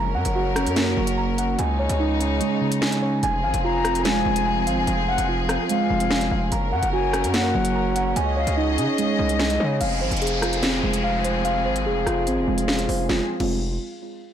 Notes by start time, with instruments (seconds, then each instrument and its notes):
Already playing: 808-style bass F#1, string section F#3 C#4 A#4, synth keys A#5
0.15 808-style bass F#2, synth keys F#5
0.25 808-style bass F#1, closed hi-hat
0.35 synth keys F#4
0.56 synth keys C#4, cross-stick, closed hi-hat
0.66 808-style bass F#2, closed hi-hat
0.76 synth keys A#3, snare, closed hi-hat
0.97 808-style bass F#1, synth keys F#3
1.07 closed hi-hat
1.18 synth keys A#5
1.38 synth keys F#5, closed hi-hat
1.59 808-style bass C#2, string section C#3 G#3 D#4, synth keys G#5, closed hi-hat
1.79 synth keys C#5
1.89 808-style bass C#2, closed hi-hat
2.00 synth keys D#4
2.20 synth keys C#4, closed hi-hat
2.41 synth keys G#3, closed hi-hat
2.61 synth keys C#3
2.72 closed hi-hat
2.82 synth keys G#5, snare, closed hi-hat
2.92 closed hi-hat
3.02 synth keys C#5
3.23 808-style bass F1, string section F3 C4 G#4, synth keys G#5, closed hi-hat
3.44 808-style bass G#1, synth keys F5, flute G#5
3.54 808-style bass F1, closed hi-hat
3.64 synth keys F4, flute A#5
3.85 synth keys C4, cross-stick, closed hi-hat
3.95 closed hi-hat
4.05 synth keys G#3, flute G#5, snare, closed hi-hat
4.26 808-style bass F1, synth keys F3
4.36 closed hi-hat
4.46 synth keys G#5
4.67 808-style bass G#1, synth keys F5, closed hi-hat
4.77 808-style bass F1
4.87 808-style bass F1, synth keys G#5, closed hi-hat
5.08 synth keys F5, flute F#5
5.18 808-style bass F1, closed hi-hat
5.29 synth keys F4
5.49 synth keys C4, cross-stick, closed hi-hat
5.69 synth keys G#3, flute F5, closed hi-hat
5.90 808-style bass F1, synth keys F3
6.00 closed hi-hat
6.11 synth keys G#5, snare
6.21 closed hi-hat
6.31 808-style bass F1, synth keys F5
6.52 808-style bass F#1, string section F#3 C#4 A#4, synth keys A#5, closed hi-hat
6.72 808-style bass F#2, flute F#5, synth keys F#5
6.83 808-style bass F#1, closed hi-hat
6.93 synth keys F#4, flute G#5
7.13 synth keys C#4, cross-stick, closed hi-hat
7.24 808-style bass F#2, closed hi-hat
7.34 synth keys A#3, flute F#5, snare, closed hi-hat
7.54 808-style bass F#1, synth keys F#3
7.65 closed hi-hat
7.75 synth keys A#5
7.96 synth keys F#5, closed hi-hat
8.16 808-style bass C#2, string section G#4 D#5, synth keys G#5, closed hi-hat
8.37 synth keys C#5, flute F5
8.47 808-style bass C#2, closed hi-hat
8.57 synth keys D#4
8.78 808-style bass C#3, synth keys C#4, closed hi-hat
8.98 synth keys G#3, flute D#5, closed hi-hat
9.19 808-style bass C2
9.29 closed hi-hat
9.39 synth keys G#5, snare, closed hi-hat
9.50 closed hi-hat
9.60 808-style bass C#3, synth keys C#5
9.81 808-style bass F1, string section F3 C4 G#4, synth keys F5, closed hi-hat, downlifter
10.01 808-style bass G#1, synth keys C5
10.11 808-style bass F1, closed hi-hat
10.17 closed hi-hat
10.22 synth keys G#4, closed hi-hat
10.27 closed hi-hat
10.42 synth keys F4, cross-stick, closed hi-hat
10.53 closed hi-hat
10.63 synth keys C4, snare, closed hi-hat
10.83 808-style bass F1, synth keys G#3
10.94 closed hi-hat
11.04 synth keys F5
11.24 synth keys C5, closed hi-hat
11.45 synth keys F5, closed hi-hat
11.65 808-style bass G#1, synth keys C5
11.76 closed hi-hat
11.86 808-style bass F1, synth keys G#4
12.06 808-style bass F1, synth keys F4, cross-stick, closed hi-hat
12.27 808-style bass G#1, synth keys C4, closed hi-hat
12.37 808-style bass F1
12.48 808-style bass F1, synth keys G#3
12.58 closed hi-hat
12.68 synth keys F5, snare
12.79 closed hi-hat
12.89 808-style bass F1, synth keys C5, open hi-hat
13.09 808-style bass F1, string section F3 C4 G#4, synth keys G#3 C4 F4, snare
13.40 808-style bass F1, synth keys G#3 C4 F4, crash